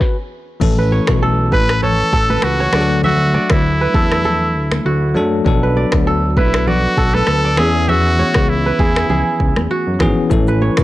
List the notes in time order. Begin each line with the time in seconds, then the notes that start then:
Already playing: F#4 G#4 B4
0.01 kick, snare
0.60 A1 E3 A3 C#4 A4, kick, crash, low conga
0.78 B4
0.92 C#5, high conga
1.07 B1, finger snap, kick, cross-stick
1.22 A4
1.52 A1 B4, kick, high conga
1.69 finger snap, cross-stick
1.82 A4 C#5, low conga
2.13 A1 A4, kick
2.30 B4, high conga
2.42 C#2 F#4, finger snap, cross-stick
2.60 C#5
2.72 D2 F#3 A3 D4 G#4 D5, finger snap, cross-stick, high conga
2.81 A4
3.04 F#4 E5, low conga
3.34 D5, high conga
3.50 D2 E4, finger snap, kick, cross-stick
3.81 B4
3.94 E2 A4, kick, high conga
4.12 finger snap, cross-stick
4.25 A4, low conga
4.55 D2
4.72 finger snap, cross-stick, high conga
4.85 D2 F#4
5.14 F#2 F#3 A3 D4 A4, high conga
5.45 B1 F#3 B3 D4 A4, kick, low conga
5.63 B4
5.77 D5, high conga
5.92 D2, finger snap, kick, cross-stick
6.07 A4
6.37 B1 E4 B4, kick, high conga
6.54 finger snap, cross-stick
6.67 F#4 D5, low conga
6.98 B1 A4, kick
7.14 A4 B4, high conga
7.27 D2, finger snap, cross-stick
7.45 D5
7.57 E2 E3 B3 C#4 G#4 E5, finger snap, cross-stick, high conga
7.89 F#4 E5, low conga
8.19 C#5, high conga
8.34 C#2, finger snap, kick, cross-stick
8.49 E4
8.66 B4
8.79 E2 G#4, kick, high conga
8.96 finger snap, cross-stick
9.10 C#2 G#4, low conga
9.40 C#2, kick
9.56 E2, finger snap, cross-stick, high conga
9.71 F#4
9.87 F#2
9.99 G#1 E3 B3 C#4 G#4, finger snap, kick, cross-stick, high conga, low conga
10.30 A1 E3 A3 C#4 A4, kick, low conga, shaker
10.47 B4, shaker
10.61 C#5, high conga
10.77 B1, finger snap, kick, cross-stick, shaker